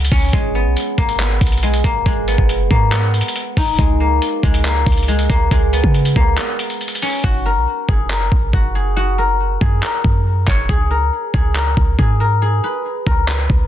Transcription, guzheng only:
0, 0, Header, 1, 2, 480
1, 0, Start_track
1, 0, Tempo, 431655
1, 369, Time_signature, 4, 2, 24, 8
1, 15203, End_track
2, 0, Start_track
2, 0, Title_t, "Guzheng"
2, 0, Program_c, 0, 107
2, 0, Note_on_c, 0, 56, 100
2, 0, Note_on_c, 0, 59, 82
2, 131, Note_on_c, 0, 61, 91
2, 358, Note_off_c, 0, 56, 0
2, 371, Note_on_c, 0, 56, 104
2, 607, Note_off_c, 0, 59, 0
2, 611, Note_on_c, 0, 59, 74
2, 1091, Note_on_c, 0, 58, 82
2, 1157, Note_off_c, 0, 59, 0
2, 1332, Note_on_c, 0, 59, 84
2, 1399, Note_off_c, 0, 58, 0
2, 1799, Note_off_c, 0, 56, 0
2, 1812, Note_on_c, 0, 56, 85
2, 2053, Note_on_c, 0, 58, 85
2, 2120, Note_off_c, 0, 59, 0
2, 2277, Note_off_c, 0, 56, 0
2, 2291, Note_on_c, 0, 56, 110
2, 2532, Note_on_c, 0, 59, 87
2, 2599, Note_off_c, 0, 58, 0
2, 3008, Note_on_c, 0, 58, 83
2, 3075, Note_off_c, 0, 59, 0
2, 3250, Note_on_c, 0, 59, 80
2, 3317, Note_off_c, 0, 58, 0
2, 3354, Note_off_c, 0, 61, 0
2, 3974, Note_on_c, 0, 63, 84
2, 4196, Note_off_c, 0, 56, 0
2, 4210, Note_on_c, 0, 56, 104
2, 4451, Note_on_c, 0, 58, 76
2, 4517, Note_off_c, 0, 59, 0
2, 4917, Note_off_c, 0, 56, 0
2, 4930, Note_on_c, 0, 56, 83
2, 5164, Note_off_c, 0, 58, 0
2, 5169, Note_on_c, 0, 58, 82
2, 5637, Note_off_c, 0, 56, 0
2, 5650, Note_on_c, 0, 56, 86
2, 5884, Note_off_c, 0, 58, 0
2, 5889, Note_on_c, 0, 58, 83
2, 6119, Note_off_c, 0, 56, 0
2, 6133, Note_on_c, 0, 56, 110
2, 6371, Note_on_c, 0, 59, 85
2, 6437, Note_off_c, 0, 58, 0
2, 6851, Note_on_c, 0, 58, 81
2, 6918, Note_off_c, 0, 59, 0
2, 6981, Note_off_c, 0, 63, 0
2, 7092, Note_on_c, 0, 59, 74
2, 7159, Note_off_c, 0, 58, 0
2, 7810, Note_on_c, 0, 61, 87
2, 8048, Note_on_c, 0, 66, 106
2, 8105, Note_off_c, 0, 56, 0
2, 8291, Note_on_c, 0, 70, 82
2, 8358, Note_off_c, 0, 59, 0
2, 8772, Note_on_c, 0, 68, 80
2, 9007, Note_off_c, 0, 70, 0
2, 9011, Note_on_c, 0, 70, 82
2, 9485, Note_off_c, 0, 66, 0
2, 9489, Note_on_c, 0, 66, 81
2, 9727, Note_off_c, 0, 68, 0
2, 9732, Note_on_c, 0, 68, 79
2, 9964, Note_off_c, 0, 66, 0
2, 9969, Note_on_c, 0, 66, 105
2, 10207, Note_off_c, 0, 70, 0
2, 10211, Note_on_c, 0, 70, 83
2, 10683, Note_off_c, 0, 68, 0
2, 10687, Note_on_c, 0, 68, 82
2, 10926, Note_off_c, 0, 70, 0
2, 10930, Note_on_c, 0, 70, 77
2, 11032, Note_off_c, 0, 61, 0
2, 11651, Note_on_c, 0, 73, 88
2, 11885, Note_off_c, 0, 68, 0
2, 11889, Note_on_c, 0, 68, 104
2, 12123, Note_off_c, 0, 70, 0
2, 12127, Note_on_c, 0, 70, 77
2, 12606, Note_off_c, 0, 68, 0
2, 12610, Note_on_c, 0, 68, 79
2, 12678, Note_off_c, 0, 66, 0
2, 12848, Note_off_c, 0, 70, 0
2, 12852, Note_on_c, 0, 70, 86
2, 13325, Note_off_c, 0, 68, 0
2, 13329, Note_on_c, 0, 68, 81
2, 13564, Note_off_c, 0, 70, 0
2, 13568, Note_on_c, 0, 70, 82
2, 13777, Note_off_c, 0, 73, 0
2, 13806, Note_off_c, 0, 68, 0
2, 13811, Note_on_c, 0, 68, 99
2, 14052, Note_on_c, 0, 71, 89
2, 14119, Note_off_c, 0, 70, 0
2, 14529, Note_on_c, 0, 70, 78
2, 14596, Note_off_c, 0, 71, 0
2, 14770, Note_on_c, 0, 71, 80
2, 14837, Note_off_c, 0, 70, 0
2, 15203, Note_off_c, 0, 68, 0
2, 15203, Note_off_c, 0, 71, 0
2, 15203, End_track
0, 0, End_of_file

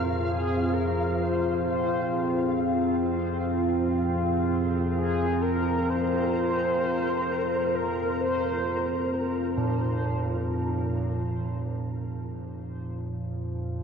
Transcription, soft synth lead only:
0, 0, Header, 1, 2, 480
1, 0, Start_track
1, 0, Key_signature, -4, "minor"
1, 0, Tempo, 500000
1, 13282, End_track
2, 0, Start_track
2, 0, Title_t, "Soft synth lead"
2, 0, Program_c, 0, 80
2, 0, Note_on_c, 0, 70, 89
2, 270, Note_off_c, 0, 70, 0
2, 275, Note_on_c, 0, 68, 107
2, 703, Note_on_c, 0, 70, 95
2, 718, Note_off_c, 0, 68, 0
2, 1175, Note_on_c, 0, 72, 97
2, 1190, Note_off_c, 0, 70, 0
2, 1608, Note_off_c, 0, 72, 0
2, 1613, Note_on_c, 0, 72, 86
2, 2479, Note_off_c, 0, 72, 0
2, 4752, Note_on_c, 0, 68, 100
2, 5199, Note_on_c, 0, 70, 99
2, 5214, Note_off_c, 0, 68, 0
2, 5658, Note_on_c, 0, 72, 127
2, 5672, Note_off_c, 0, 70, 0
2, 7440, Note_on_c, 0, 70, 112
2, 7454, Note_off_c, 0, 72, 0
2, 7868, Note_off_c, 0, 70, 0
2, 7876, Note_on_c, 0, 72, 104
2, 9155, Note_off_c, 0, 72, 0
2, 13282, End_track
0, 0, End_of_file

